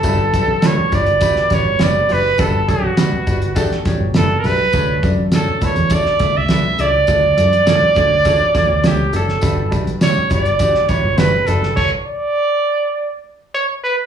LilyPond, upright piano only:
<<
  \new Staff \with { instrumentName = "Upright piano" } { \time 4/4 \key g \lydian \tempo 4 = 102 <d' fis' g' b'>8 <d' fis' g' b'>8 <d' fis' g' b'>8 <d' fis' g' b'>8 <d' fis' g' b'>8 <d' fis' g' b'>8 <d' fis' g' b'>8 <d' fis' g' b'>8 | <d' fis' g' b'>8 <d' fis' g' cis''>8 <d' fis' g' b'>8 <d' fis' g' b'>8 <d' fis' g' a'>8 <d' fis' g' cis''>8 <d' fis' g' b'>8 <d' fis' g' b'>8 | <d' fis' a' cis''>8 <d' fis' a' d''>8 <d' fis' a' cis''>8 <d' fis' a' b'>8 <d' fis' a' d''>8 <d' fis' a' e''>8 <d' fis' a' b'>8 <d' fis' a' cis''>8 | <d' fis' a' d''>8 <d' fis' a' d''>8 <d' fis' a' cis''>8 <d' fis' a' cis''>8 <d' fis' a' cis''>8 <d' fis' a' cis''>8 <d' fis' a' cis''>8 <d' fis' a' cis''>8 |
<d' fis' g' b'>8 <d' fis' g' b'>8 <d' fis' g' d''>8 <d' fis' g' b'>8 <d' fis' g' d''>8 <d' fis' g' b'>8 <d' fis' g' b'>8 <d' fis' g' b'>8 | r1 | }
  \new Staff \with { instrumentName = "Upright piano" } { \clef bass \time 4/4 \key g \lydian g,4. r2 r8 | g,4. r2 r8 | d4. r2 r8 | d4. r2 r8 |
g,4. r2 r8 | r1 | }
>>